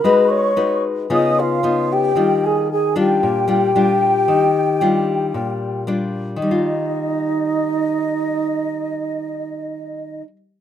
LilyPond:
<<
  \new Staff \with { instrumentName = "Flute section" } { \time 4/4 \key ees \major \tempo 4 = 113 ces'''8 des'''4 r8 ees'''8 f''4 g''8~ | g''8 aes''8 aes''8 g''2~ g''8~ | g''2. r4 | ees''1~ |
ees''1 | }
  \new Staff \with { instrumentName = "Alto flute" } { \time 4/4 \key ees \major ces''8 des''4 r8 ees''8 f'4 g'8~ | g'8 aes'8 aes'8 g'2~ g'8~ | g'2. r4 | ees'1~ |
ees'1 | }
  \new Staff \with { instrumentName = "Nylon-string guitar" } { \time 4/4 \key ees \major << { <ees' ges' ces''>4 <ees' ges' ces''>4 <ces' ees' f'>4 <ces' ees' f'>4 | <g d' f'>4 r8 <g d' f'>4 <g d' f'>8 <g d' f'>4~ | <g d' f'>8 r8 <g d' f'>2 <g d' f'>4 | <ees g f'>1~ |
<ees g f'>1 | } \\ { aes2 des2 | ees2 bes,2 | ees2 bes,2 | r1 |
r1 | } >> }
>>